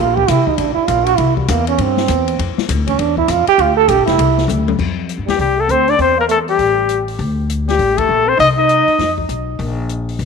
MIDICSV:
0, 0, Header, 1, 6, 480
1, 0, Start_track
1, 0, Key_signature, -1, "major"
1, 0, Tempo, 300150
1, 1898, Time_signature, 4, 2, 24, 8
1, 16392, End_track
2, 0, Start_track
2, 0, Title_t, "Trumpet"
2, 0, Program_c, 0, 56
2, 8463, Note_on_c, 0, 67, 74
2, 8615, Note_off_c, 0, 67, 0
2, 8647, Note_on_c, 0, 67, 77
2, 8961, Note_on_c, 0, 69, 89
2, 8985, Note_off_c, 0, 67, 0
2, 9129, Note_on_c, 0, 72, 84
2, 9153, Note_off_c, 0, 69, 0
2, 9437, Note_on_c, 0, 74, 93
2, 9461, Note_off_c, 0, 72, 0
2, 9593, Note_off_c, 0, 74, 0
2, 9623, Note_on_c, 0, 72, 86
2, 9880, Note_off_c, 0, 72, 0
2, 9922, Note_on_c, 0, 70, 74
2, 9991, Note_off_c, 0, 70, 0
2, 10094, Note_on_c, 0, 69, 82
2, 10221, Note_off_c, 0, 69, 0
2, 10400, Note_on_c, 0, 67, 82
2, 11275, Note_off_c, 0, 67, 0
2, 12300, Note_on_c, 0, 67, 80
2, 12763, Note_on_c, 0, 69, 98
2, 12787, Note_off_c, 0, 67, 0
2, 13252, Note_on_c, 0, 72, 82
2, 13276, Note_off_c, 0, 69, 0
2, 13424, Note_off_c, 0, 72, 0
2, 13431, Note_on_c, 0, 75, 101
2, 13564, Note_off_c, 0, 75, 0
2, 13730, Note_on_c, 0, 75, 97
2, 14621, Note_off_c, 0, 75, 0
2, 16392, End_track
3, 0, Start_track
3, 0, Title_t, "Trombone"
3, 0, Program_c, 1, 57
3, 0, Note_on_c, 1, 65, 84
3, 259, Note_on_c, 1, 67, 114
3, 283, Note_off_c, 1, 65, 0
3, 469, Note_on_c, 1, 64, 90
3, 493, Note_off_c, 1, 67, 0
3, 756, Note_on_c, 1, 63, 78
3, 780, Note_off_c, 1, 64, 0
3, 924, Note_on_c, 1, 62, 74
3, 948, Note_off_c, 1, 63, 0
3, 1181, Note_off_c, 1, 62, 0
3, 1190, Note_on_c, 1, 64, 89
3, 1395, Note_on_c, 1, 65, 97
3, 1419, Note_off_c, 1, 64, 0
3, 1685, Note_on_c, 1, 66, 122
3, 1709, Note_off_c, 1, 65, 0
3, 1881, Note_on_c, 1, 64, 83
3, 1905, Note_off_c, 1, 66, 0
3, 2179, Note_off_c, 1, 64, 0
3, 2188, Note_on_c, 1, 55, 56
3, 2381, Note_on_c, 1, 58, 80
3, 2405, Note_off_c, 1, 55, 0
3, 2681, Note_off_c, 1, 58, 0
3, 2694, Note_on_c, 1, 61, 87
3, 2903, Note_on_c, 1, 60, 75
3, 2927, Note_off_c, 1, 61, 0
3, 3839, Note_off_c, 1, 60, 0
3, 4599, Note_on_c, 1, 61, 92
3, 4792, Note_on_c, 1, 62, 88
3, 4816, Note_off_c, 1, 61, 0
3, 5076, Note_off_c, 1, 62, 0
3, 5086, Note_on_c, 1, 64, 96
3, 5296, Note_on_c, 1, 65, 91
3, 5320, Note_off_c, 1, 64, 0
3, 5567, Note_off_c, 1, 65, 0
3, 5577, Note_on_c, 1, 67, 127
3, 5772, Note_on_c, 1, 65, 97
3, 5796, Note_off_c, 1, 67, 0
3, 6019, Note_off_c, 1, 65, 0
3, 6028, Note_on_c, 1, 69, 119
3, 6224, Note_on_c, 1, 67, 102
3, 6248, Note_off_c, 1, 69, 0
3, 6482, Note_off_c, 1, 67, 0
3, 6492, Note_on_c, 1, 64, 95
3, 7113, Note_off_c, 1, 64, 0
3, 8408, Note_on_c, 1, 55, 57
3, 8579, Note_off_c, 1, 55, 0
3, 8588, Note_on_c, 1, 55, 65
3, 8907, Note_on_c, 1, 57, 69
3, 8931, Note_off_c, 1, 55, 0
3, 9090, Note_on_c, 1, 60, 89
3, 9114, Note_off_c, 1, 57, 0
3, 9414, Note_on_c, 1, 62, 86
3, 9438, Note_off_c, 1, 60, 0
3, 9553, Note_off_c, 1, 62, 0
3, 9563, Note_on_c, 1, 60, 80
3, 9848, Note_off_c, 1, 60, 0
3, 9876, Note_on_c, 1, 58, 74
3, 9956, Note_off_c, 1, 58, 0
3, 10045, Note_on_c, 1, 57, 70
3, 10183, Note_off_c, 1, 57, 0
3, 10366, Note_on_c, 1, 55, 57
3, 11258, Note_off_c, 1, 55, 0
3, 12273, Note_on_c, 1, 55, 61
3, 12726, Note_on_c, 1, 57, 74
3, 12750, Note_off_c, 1, 55, 0
3, 13209, Note_on_c, 1, 60, 74
3, 13233, Note_off_c, 1, 57, 0
3, 13385, Note_off_c, 1, 60, 0
3, 13394, Note_on_c, 1, 63, 74
3, 13535, Note_off_c, 1, 63, 0
3, 13707, Note_on_c, 1, 63, 85
3, 14610, Note_off_c, 1, 63, 0
3, 16392, End_track
4, 0, Start_track
4, 0, Title_t, "Upright bass"
4, 0, Program_c, 2, 32
4, 0, Note_on_c, 2, 34, 85
4, 442, Note_off_c, 2, 34, 0
4, 453, Note_on_c, 2, 36, 93
4, 737, Note_off_c, 2, 36, 0
4, 926, Note_on_c, 2, 33, 83
4, 1213, Note_off_c, 2, 33, 0
4, 1407, Note_on_c, 2, 34, 100
4, 1878, Note_off_c, 2, 34, 0
4, 1891, Note_on_c, 2, 36, 85
4, 2360, Note_off_c, 2, 36, 0
4, 2375, Note_on_c, 2, 40, 109
4, 2842, Note_off_c, 2, 40, 0
4, 2851, Note_on_c, 2, 43, 88
4, 3319, Note_off_c, 2, 43, 0
4, 3337, Note_on_c, 2, 40, 99
4, 3802, Note_off_c, 2, 40, 0
4, 3822, Note_on_c, 2, 41, 89
4, 4100, Note_off_c, 2, 41, 0
4, 4299, Note_on_c, 2, 38, 96
4, 4762, Note_off_c, 2, 38, 0
4, 4777, Note_on_c, 2, 40, 83
4, 5240, Note_off_c, 2, 40, 0
4, 5247, Note_on_c, 2, 41, 103
4, 5530, Note_off_c, 2, 41, 0
4, 5727, Note_on_c, 2, 38, 88
4, 6194, Note_off_c, 2, 38, 0
4, 6208, Note_on_c, 2, 34, 101
4, 6361, Note_on_c, 2, 31, 58
4, 6385, Note_off_c, 2, 34, 0
4, 6510, Note_off_c, 2, 31, 0
4, 6520, Note_on_c, 2, 29, 74
4, 6674, Note_off_c, 2, 29, 0
4, 6690, Note_on_c, 2, 36, 94
4, 7152, Note_off_c, 2, 36, 0
4, 7162, Note_on_c, 2, 38, 95
4, 7631, Note_off_c, 2, 38, 0
4, 7656, Note_on_c, 2, 41, 77
4, 8249, Note_off_c, 2, 41, 0
4, 8285, Note_on_c, 2, 43, 54
4, 8437, Note_off_c, 2, 43, 0
4, 8446, Note_on_c, 2, 40, 69
4, 8597, Note_off_c, 2, 40, 0
4, 8613, Note_on_c, 2, 36, 76
4, 9059, Note_off_c, 2, 36, 0
4, 9092, Note_on_c, 2, 38, 73
4, 9538, Note_off_c, 2, 38, 0
4, 9576, Note_on_c, 2, 40, 82
4, 10487, Note_off_c, 2, 40, 0
4, 10532, Note_on_c, 2, 33, 73
4, 11446, Note_off_c, 2, 33, 0
4, 11496, Note_on_c, 2, 38, 90
4, 12409, Note_off_c, 2, 38, 0
4, 12452, Note_on_c, 2, 33, 76
4, 12901, Note_off_c, 2, 33, 0
4, 12937, Note_on_c, 2, 34, 68
4, 13384, Note_off_c, 2, 34, 0
4, 13417, Note_on_c, 2, 36, 84
4, 14145, Note_off_c, 2, 36, 0
4, 14373, Note_on_c, 2, 41, 71
4, 14822, Note_off_c, 2, 41, 0
4, 14853, Note_on_c, 2, 35, 76
4, 15301, Note_off_c, 2, 35, 0
4, 15335, Note_on_c, 2, 34, 91
4, 16249, Note_off_c, 2, 34, 0
4, 16296, Note_on_c, 2, 29, 75
4, 16392, Note_off_c, 2, 29, 0
4, 16392, End_track
5, 0, Start_track
5, 0, Title_t, "Muted upright bass strokes"
5, 751, Note_on_c, 9, 29, 44
5, 911, Note_off_c, 9, 29, 0
5, 1222, Note_on_c, 9, 29, 42
5, 1382, Note_off_c, 9, 29, 0
5, 4113, Note_on_c, 9, 29, 37
5, 4273, Note_off_c, 9, 29, 0
5, 5551, Note_on_c, 9, 29, 47
5, 5710, Note_off_c, 9, 29, 0
5, 14187, Note_on_c, 9, 29, 40
5, 14347, Note_off_c, 9, 29, 0
5, 16392, End_track
6, 0, Start_track
6, 0, Title_t, "Drums"
6, 277, Note_on_c, 9, 36, 78
6, 437, Note_off_c, 9, 36, 0
6, 451, Note_on_c, 9, 44, 67
6, 451, Note_on_c, 9, 51, 82
6, 453, Note_on_c, 9, 36, 28
6, 611, Note_off_c, 9, 44, 0
6, 611, Note_off_c, 9, 51, 0
6, 612, Note_off_c, 9, 36, 0
6, 752, Note_on_c, 9, 36, 62
6, 912, Note_off_c, 9, 36, 0
6, 925, Note_on_c, 9, 51, 74
6, 927, Note_on_c, 9, 36, 29
6, 1085, Note_off_c, 9, 51, 0
6, 1087, Note_off_c, 9, 36, 0
6, 1409, Note_on_c, 9, 36, 21
6, 1409, Note_on_c, 9, 44, 52
6, 1409, Note_on_c, 9, 51, 69
6, 1569, Note_off_c, 9, 36, 0
6, 1569, Note_off_c, 9, 44, 0
6, 1569, Note_off_c, 9, 51, 0
6, 1703, Note_on_c, 9, 51, 56
6, 1863, Note_off_c, 9, 51, 0
6, 1886, Note_on_c, 9, 51, 72
6, 1890, Note_on_c, 9, 36, 29
6, 2046, Note_off_c, 9, 51, 0
6, 2050, Note_off_c, 9, 36, 0
6, 2192, Note_on_c, 9, 36, 68
6, 2352, Note_off_c, 9, 36, 0
6, 2373, Note_on_c, 9, 44, 74
6, 2373, Note_on_c, 9, 51, 81
6, 2532, Note_off_c, 9, 44, 0
6, 2532, Note_off_c, 9, 51, 0
6, 2672, Note_on_c, 9, 51, 52
6, 2832, Note_off_c, 9, 51, 0
6, 2852, Note_on_c, 9, 36, 28
6, 2852, Note_on_c, 9, 51, 67
6, 3012, Note_off_c, 9, 36, 0
6, 3012, Note_off_c, 9, 51, 0
6, 3152, Note_on_c, 9, 38, 55
6, 3311, Note_off_c, 9, 38, 0
6, 3328, Note_on_c, 9, 44, 67
6, 3328, Note_on_c, 9, 51, 67
6, 3334, Note_on_c, 9, 36, 26
6, 3488, Note_off_c, 9, 44, 0
6, 3488, Note_off_c, 9, 51, 0
6, 3494, Note_off_c, 9, 36, 0
6, 3641, Note_on_c, 9, 51, 55
6, 3801, Note_off_c, 9, 51, 0
6, 3820, Note_on_c, 9, 36, 27
6, 3828, Note_on_c, 9, 51, 70
6, 3980, Note_off_c, 9, 36, 0
6, 3987, Note_off_c, 9, 51, 0
6, 4127, Note_on_c, 9, 38, 65
6, 4287, Note_off_c, 9, 38, 0
6, 4297, Note_on_c, 9, 36, 23
6, 4301, Note_on_c, 9, 44, 72
6, 4301, Note_on_c, 9, 51, 79
6, 4457, Note_off_c, 9, 36, 0
6, 4461, Note_off_c, 9, 44, 0
6, 4461, Note_off_c, 9, 51, 0
6, 4597, Note_on_c, 9, 36, 69
6, 4597, Note_on_c, 9, 51, 57
6, 4757, Note_off_c, 9, 36, 0
6, 4757, Note_off_c, 9, 51, 0
6, 4775, Note_on_c, 9, 36, 28
6, 4780, Note_on_c, 9, 51, 66
6, 4935, Note_off_c, 9, 36, 0
6, 4940, Note_off_c, 9, 51, 0
6, 5074, Note_on_c, 9, 36, 65
6, 5234, Note_off_c, 9, 36, 0
6, 5249, Note_on_c, 9, 44, 64
6, 5249, Note_on_c, 9, 51, 70
6, 5409, Note_off_c, 9, 44, 0
6, 5409, Note_off_c, 9, 51, 0
6, 5554, Note_on_c, 9, 51, 58
6, 5714, Note_off_c, 9, 51, 0
6, 5730, Note_on_c, 9, 36, 24
6, 5737, Note_on_c, 9, 51, 63
6, 5890, Note_off_c, 9, 36, 0
6, 5897, Note_off_c, 9, 51, 0
6, 6210, Note_on_c, 9, 36, 23
6, 6212, Note_on_c, 9, 44, 72
6, 6212, Note_on_c, 9, 51, 83
6, 6370, Note_off_c, 9, 36, 0
6, 6372, Note_off_c, 9, 44, 0
6, 6372, Note_off_c, 9, 51, 0
6, 6514, Note_on_c, 9, 38, 53
6, 6514, Note_on_c, 9, 51, 49
6, 6674, Note_off_c, 9, 38, 0
6, 6674, Note_off_c, 9, 51, 0
6, 6692, Note_on_c, 9, 36, 25
6, 6700, Note_on_c, 9, 51, 75
6, 6852, Note_off_c, 9, 36, 0
6, 6860, Note_off_c, 9, 51, 0
6, 7000, Note_on_c, 9, 38, 40
6, 7160, Note_off_c, 9, 38, 0
6, 7176, Note_on_c, 9, 44, 68
6, 7176, Note_on_c, 9, 48, 50
6, 7336, Note_off_c, 9, 44, 0
6, 7336, Note_off_c, 9, 48, 0
6, 7483, Note_on_c, 9, 48, 78
6, 7643, Note_off_c, 9, 48, 0
6, 7655, Note_on_c, 9, 36, 75
6, 7661, Note_on_c, 9, 49, 71
6, 7815, Note_off_c, 9, 36, 0
6, 7821, Note_off_c, 9, 49, 0
6, 8141, Note_on_c, 9, 42, 55
6, 8300, Note_off_c, 9, 42, 0
6, 8450, Note_on_c, 9, 38, 57
6, 8450, Note_on_c, 9, 46, 37
6, 8609, Note_off_c, 9, 38, 0
6, 8609, Note_off_c, 9, 46, 0
6, 8617, Note_on_c, 9, 36, 37
6, 8623, Note_on_c, 9, 46, 42
6, 8777, Note_off_c, 9, 36, 0
6, 8783, Note_off_c, 9, 46, 0
6, 9101, Note_on_c, 9, 42, 50
6, 9261, Note_off_c, 9, 42, 0
6, 9399, Note_on_c, 9, 46, 35
6, 9559, Note_off_c, 9, 46, 0
6, 9576, Note_on_c, 9, 36, 37
6, 9577, Note_on_c, 9, 46, 42
6, 9736, Note_off_c, 9, 36, 0
6, 9737, Note_off_c, 9, 46, 0
6, 10059, Note_on_c, 9, 42, 54
6, 10219, Note_off_c, 9, 42, 0
6, 10361, Note_on_c, 9, 46, 37
6, 10521, Note_off_c, 9, 46, 0
6, 10535, Note_on_c, 9, 36, 37
6, 10538, Note_on_c, 9, 46, 46
6, 10694, Note_off_c, 9, 36, 0
6, 10698, Note_off_c, 9, 46, 0
6, 11016, Note_on_c, 9, 42, 55
6, 11176, Note_off_c, 9, 42, 0
6, 11322, Note_on_c, 9, 46, 39
6, 11482, Note_off_c, 9, 46, 0
6, 11496, Note_on_c, 9, 36, 35
6, 11498, Note_on_c, 9, 46, 43
6, 11656, Note_off_c, 9, 36, 0
6, 11658, Note_off_c, 9, 46, 0
6, 11987, Note_on_c, 9, 42, 58
6, 12147, Note_off_c, 9, 42, 0
6, 12289, Note_on_c, 9, 38, 49
6, 12289, Note_on_c, 9, 46, 39
6, 12449, Note_off_c, 9, 38, 0
6, 12449, Note_off_c, 9, 46, 0
6, 12458, Note_on_c, 9, 36, 37
6, 12459, Note_on_c, 9, 46, 52
6, 12618, Note_off_c, 9, 36, 0
6, 12619, Note_off_c, 9, 46, 0
6, 12760, Note_on_c, 9, 36, 75
6, 12763, Note_on_c, 9, 51, 65
6, 12920, Note_off_c, 9, 36, 0
6, 12922, Note_off_c, 9, 51, 0
6, 13418, Note_on_c, 9, 36, 30
6, 13426, Note_on_c, 9, 46, 50
6, 13578, Note_off_c, 9, 36, 0
6, 13586, Note_off_c, 9, 46, 0
6, 13898, Note_on_c, 9, 42, 56
6, 14057, Note_off_c, 9, 42, 0
6, 14196, Note_on_c, 9, 46, 35
6, 14356, Note_off_c, 9, 46, 0
6, 14375, Note_on_c, 9, 36, 34
6, 14381, Note_on_c, 9, 38, 37
6, 14381, Note_on_c, 9, 46, 44
6, 14535, Note_off_c, 9, 36, 0
6, 14541, Note_off_c, 9, 38, 0
6, 14541, Note_off_c, 9, 46, 0
6, 14677, Note_on_c, 9, 36, 53
6, 14837, Note_off_c, 9, 36, 0
6, 14857, Note_on_c, 9, 42, 55
6, 15016, Note_off_c, 9, 42, 0
6, 15336, Note_on_c, 9, 36, 35
6, 15343, Note_on_c, 9, 46, 43
6, 15496, Note_off_c, 9, 36, 0
6, 15502, Note_off_c, 9, 46, 0
6, 15820, Note_on_c, 9, 42, 52
6, 15980, Note_off_c, 9, 42, 0
6, 16131, Note_on_c, 9, 46, 37
6, 16291, Note_off_c, 9, 46, 0
6, 16296, Note_on_c, 9, 36, 35
6, 16298, Note_on_c, 9, 46, 46
6, 16392, Note_off_c, 9, 36, 0
6, 16392, Note_off_c, 9, 46, 0
6, 16392, End_track
0, 0, End_of_file